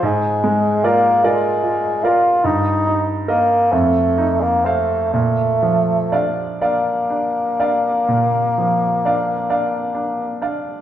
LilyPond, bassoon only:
\new Staff \with { instrumentName = "Bassoon" } { \time 12/8 \key f \mixolydian \tempo 4. = 44 aes4 bes8 aes4 f'8 ees'4 bes8 a8. bes16 a8 | a4~ a16 r16 bes1 r8 | }